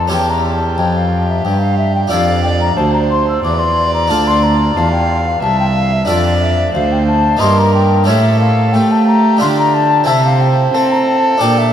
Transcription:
0.00 0.14 F2 soft
0.00 0.12 A5 medium
0.08 2.06 C#4 soft
0.08 2.07 G4 soft
0.08 2.08 A4 soft
0.12 0.75 E2 soft
0.12 0.79 E2 medium
0.12 2.13 G4 medium
0.12 0.31 G5 medium
0.30 0.46 A#5 medium
0.44 0.80 A5 medium
0.78 1.45 F2 soft
0.78 1.41 F2 soft
0.78 0.95 G5 medium
0.96 1.31 F5 medium
1.29 1.46 E5 medium
1.45 2.08 G2 soft
1.45 2.11 G2 soft
1.45 1.61 G5 medium
1.61 1.78 F5 medium
1.78 1.95 E5 medium
1.95 2.01 G5 medium
2.08 2.77 F2 medium
2.08 4.06 D4 soft
2.08 4.06 F4 soft
2.08 4.07 A4 soft
2.08 2.79 D5 medium
2.08 2.43 F5 medium
2.12 2.75 F2 soft
2.44 2.50 G5 medium
2.61 2.76 A#5 medium
2.76 3.44 D2 medium
2.76 3.41 D2 soft
2.76 3.46 C5 medium
2.76 2.93 A5 medium
2.94 3.00 A#5 medium
3.10 3.28 C6 medium
3.28 3.43 E6 medium
3.44 4.13 E2 soft
3.44 4.08 E2 soft
3.44 4.79 D5 medium
3.44 3.61 D6 medium
3.59 3.93 C6 medium
3.94 4.11 A#5 medium
4.08 4.77 D2 medium
4.08 6.04 D4 soft
4.08 6.05 F4 soft
4.08 6.05 A4 soft
4.08 4.29 A5 medium
4.12 4.74 D2 soft
4.27 4.45 C6 medium
4.43 4.77 A#5 medium
4.75 5.42 E2 medium
4.75 5.40 E2 soft
4.75 5.42 F5 medium
4.75 4.92 A5 medium
4.92 5.29 G5 medium
5.28 5.41 F5 medium
5.42 6.05 C2 soft
5.42 6.08 C2 soft
5.42 6.08 E5 medium
5.42 5.59 A5 medium
5.60 5.66 G5 medium
5.76 5.95 F5 medium
5.93 6.10 E5 medium
6.05 7.36 D4 soft
6.05 7.36 F4 soft
6.05 7.37 A4 soft
6.05 6.43 D5 medium
6.09 6.72 F2 medium
6.09 6.72 F2 soft
6.09 6.75 D5 medium
6.41 6.73 E5 medium
6.74 7.38 D2 soft
6.74 7.41 D2 medium
6.74 7.43 C5 medium
6.74 6.94 F5 medium
6.92 7.07 G5 medium
7.07 7.42 A5 medium
7.37 8.04 A#3 soft
7.37 8.05 D#4 soft
7.37 8.06 G4 soft
7.37 7.60 C6 medium
7.41 8.04 G2 soft
7.41 8.11 G2 medium
7.41 8.08 A#4 medium
7.59 7.74 A#5 medium
7.74 8.07 G5 medium
8.04 8.73 A3 soft
8.04 9.36 C#4 soft
8.04 9.37 G4 soft
8.04 8.40 E5 medium
8.08 8.70 A2 soft
8.08 8.77 A2 medium
8.08 8.77 A4 medium
8.40 8.74 F5 medium
8.73 9.36 A3 medium
8.73 9.44 A3 medium
8.73 10.07 G4 medium
8.73 8.93 G5 medium
8.92 9.07 A5 medium
9.07 9.40 A#5 medium
9.37 10.04 A3 soft
9.37 10.04 D4 soft
9.37 10.05 F4 soft
9.37 9.47 C6 medium
9.41 10.04 D3 soft
9.41 10.08 D3 medium
9.59 9.76 A#5 medium
9.74 10.09 A5 medium
10.04 10.73 C4 soft
10.04 11.36 E4 soft
10.04 11.37 A4 soft
10.04 10.76 C5 medium
10.04 10.24 E5 medium
10.08 10.70 C3 soft
10.08 10.73 C3 medium
10.25 10.42 F5 medium
10.41 10.76 G5 medium
10.75 11.38 C4 soft
10.75 11.41 C4 medium
10.75 11.73 A4 medium
10.75 10.94 A5 medium
10.92 11.07 A#5 medium
11.07 11.43 A5 medium
11.38 11.73 D4 soft
11.38 11.73 G4 soft
11.38 11.73 D5 soft
11.38 11.60 G5 medium
11.42 11.73 A#2 soft
11.59 11.73 E5 medium

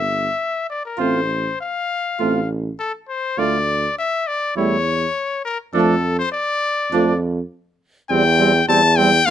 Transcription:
0.00 0.29 G1 medium
0.00 0.68 E5 medium
0.70 0.85 D5 medium
0.85 1.00 A#4 medium
0.97 1.51 A1 medium
0.97 1.21 A3 medium
0.97 1.21 C4 medium
0.97 1.20 F4 medium
0.97 1.60 C5 medium
1.61 2.49 F5 medium
2.19 2.70 A1 medium
2.19 2.41 A3 medium
2.19 2.42 C4 medium
2.19 2.40 F4 medium
2.79 2.93 A4 medium
3.09 3.40 C5 medium
3.37 3.88 D2 medium
3.37 3.59 A3 medium
3.37 3.60 A3 medium
3.37 3.59 F4 medium
3.37 3.98 D5 medium
3.99 4.29 E5 medium
4.27 4.57 D5 medium
4.56 5.06 E2 medium
4.56 4.77 G3 medium
4.56 4.78 A3 medium
4.56 4.77 E4 medium
4.56 5.44 C#5 medium
5.45 5.58 A#4 medium
5.74 6.23 F2 medium
5.74 5.95 F3 medium
5.74 5.95 A3 medium
5.74 5.94 D4 medium
5.74 6.17 A4 medium
6.19 6.32 C5 medium
6.33 7.20 D5 medium
6.92 7.42 F2 medium
6.92 7.13 F3 medium
6.92 7.13 A3 medium
6.92 7.13 D4 medium
8.10 8.62 E2 medium
8.10 8.23 G3 medium
8.10 8.24 G3 medium
8.10 8.23 C4 medium
8.10 8.64 G5 loud
8.39 8.52 G3 medium
8.39 8.53 G3 medium
8.39 8.53 C4 medium
8.68 9.20 E2 medium
8.68 8.82 G3 medium
8.68 8.82 C4 medium
8.68 8.99 A5 loud
8.97 9.12 G3 medium
8.97 9.11 C4 medium
8.97 9.28 G5 loud
9.26 9.30 D2 medium
9.26 9.30 D3 medium
9.26 9.30 A#3 medium
9.26 9.30 F4 medium
9.26 9.30 F5 loud

